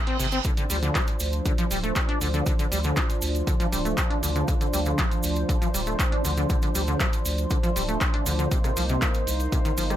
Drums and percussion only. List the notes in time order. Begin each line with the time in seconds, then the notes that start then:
0.07 closed hi-hat
0.20 open hi-hat, cabasa
0.32 closed hi-hat, cabasa
0.45 kick, closed hi-hat, cabasa
0.57 closed hi-hat, cabasa
0.70 open hi-hat, cabasa
0.83 closed hi-hat, cabasa
0.95 kick, clap, closed hi-hat, cabasa
1.08 closed hi-hat, cabasa
1.20 open hi-hat, cabasa
1.33 closed hi-hat, cabasa
1.46 kick, closed hi-hat, cabasa
1.58 closed hi-hat, cabasa
1.71 open hi-hat, cabasa
1.84 closed hi-hat, cabasa
1.96 kick, clap, closed hi-hat, cabasa
2.09 closed hi-hat
2.21 open hi-hat, cabasa
2.34 closed hi-hat, cabasa
2.46 kick, closed hi-hat, cabasa
2.59 closed hi-hat, cabasa
2.72 open hi-hat, cabasa
2.84 closed hi-hat, cabasa
2.96 kick, clap, closed hi-hat, cabasa
3.10 closed hi-hat, cabasa
3.22 open hi-hat, cabasa
3.35 closed hi-hat, cabasa
3.47 kick, closed hi-hat, cabasa
3.60 closed hi-hat, cabasa
3.72 open hi-hat, cabasa
3.85 closed hi-hat, cabasa
3.98 kick, clap, closed hi-hat, cabasa
4.11 closed hi-hat
4.23 open hi-hat, cabasa
4.36 closed hi-hat, cabasa
4.48 kick, closed hi-hat, cabasa
4.61 closed hi-hat, cabasa
4.74 open hi-hat, cabasa
4.86 closed hi-hat, cabasa
4.98 kick, clap, closed hi-hat, cabasa
5.11 closed hi-hat, cabasa
5.23 open hi-hat, cabasa
5.36 closed hi-hat, cabasa
5.49 kick, closed hi-hat, cabasa
5.62 closed hi-hat, cabasa
5.74 open hi-hat, cabasa
5.87 closed hi-hat, cabasa
5.99 kick, clap, closed hi-hat, cabasa
6.12 closed hi-hat
6.25 open hi-hat, cabasa
6.37 closed hi-hat, cabasa
6.50 kick, closed hi-hat, cabasa
6.62 closed hi-hat, cabasa
6.75 open hi-hat, cabasa
6.88 closed hi-hat, cabasa
7.00 kick, clap, closed hi-hat, cabasa
7.13 closed hi-hat, cabasa
7.25 open hi-hat, cabasa
7.38 closed hi-hat, cabasa
7.50 kick, closed hi-hat, cabasa
7.63 closed hi-hat, cabasa
7.76 open hi-hat, cabasa
7.89 closed hi-hat, cabasa
8.01 kick, clap, closed hi-hat, cabasa
8.14 closed hi-hat
8.26 open hi-hat, cabasa
8.39 closed hi-hat, cabasa
8.51 kick, closed hi-hat, cabasa
8.64 cross-stick, closed hi-hat, cabasa
8.77 open hi-hat, cabasa
8.89 closed hi-hat, cabasa
9.02 kick, clap, closed hi-hat, cabasa
9.14 closed hi-hat, cabasa
9.27 open hi-hat, cabasa
9.40 closed hi-hat, cabasa
9.52 kick, closed hi-hat, cabasa
9.65 closed hi-hat, cabasa
9.77 open hi-hat, cabasa
9.90 cross-stick, closed hi-hat, cabasa